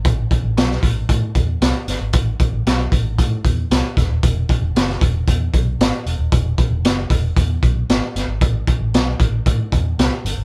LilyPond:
<<
  \new Staff \with { instrumentName = "Fingered electric bass" } { \clef bass \time 4/4 \key a \dorian \tempo 4 = 115 a,,8 r16 a,,16 b,,8 a,,8 a,8 e,8 c,16 r16 g,,16 gis,,16 | a,,8 r16 a,,16 b,,8 a,,8 a,8 e,8 c,16 r16 e,,16 dis,,16 | e,,8 r16 e,,16 fis,,8 e,,8 e,8 b,,8 gis,,16 r16 e,,16 dis,,16 | e,,8 r16 e,,16 fis,,8 e,,8 e,8 b,,8 gis,,16 r16 g,,16 gis,,16 |
a,,8 r16 a,,16 b,,8 a,,8 a,8 e,8 c,16 r16 g,,16 gis,,16 | }
  \new DrumStaff \with { instrumentName = "Drums" } \drummode { \time 4/4 <hh bd>8 <hh bd>8 <hh sn>16 sn16 <hh bd>8 <hh bd>8 <hh bd>8 <hh sn>8 <hh sn>8 | <hh bd>8 <hh bd>8 <hh sn>8 <hh bd>8 <hh bd>8 <hh bd>8 <hh sn>8 <hh bd sn>8 | <hh bd>8 <hh bd>8 <hh sn>16 sn16 <hh bd>8 <hh bd>8 <hh bd>8 <hh sn>8 hh8 | <hh bd>8 <hh bd>8 <hh sn>8 <hh bd>8 <hh bd>8 <hh bd>8 <hh sn>8 <hh sn>8 |
<hh bd>8 <hh bd>8 <hh sn>8 <hh bd>8 <hh bd>8 <hh bd>8 <hh sn>8 hh8 | }
>>